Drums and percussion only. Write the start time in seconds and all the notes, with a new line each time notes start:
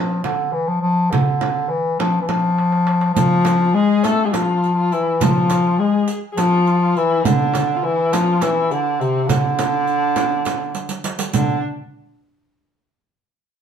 0.24 darbuka tek, frame drum
0.83 darbuka ka
1.12 darbuka dum, frame drum
1.28 darbuka ka
1.41 darbuka tek, frame drum
1.57 darbuka ka
1.71 darbuka ka
2.00 darbuka tek, frame drum
2.29 darbuka tek, frame drum
2.58 darbuka tek
2.72 darbuka ka
2.87 darbuka tek
3.01 darbuka ka
3.16 riq, darbuka dum, frame drum
3.45 riq, darbuka tek, frame drum
3.60 darbuka ka
4.04 riq, darbuka tek, frame drum
4.33 riq, darbuka tek, frame drum
4.64 riq
4.92 riq, darbuka ka
5.21 riq, darbuka dum, frame drum
5.36 darbuka ka
5.50 riq, darbuka tek, frame drum
5.65 darbuka ka
6.08 riq
6.37 riq, darbuka tek, frame drum
6.67 riq
6.96 riq, darbuka ka
7.25 riq, darbuka dum, frame drum
7.41 darbuka ka
7.54 riq, darbuka tek, frame drum
8.13 riq, darbuka tek, frame drum
8.41 riq, darbuka tek, frame drum
8.71 riq
9.00 riq, darbuka ka
9.29 riq, frame drum, darbuka dum
9.44 darbuka ka
9.59 riq, darbuka tek, frame drum
9.73 darbuka ka
9.87 riq, darbuka ka
10.16 riq, darbuka tek, frame drum
10.45 riq, darbuka tek, frame drum
10.75 riq, darbuka tek
10.89 riq, darbuka ka
11.04 riq, darbuka tek
11.19 riq, darbuka ka
11.33 riq, frame drum, darbuka dum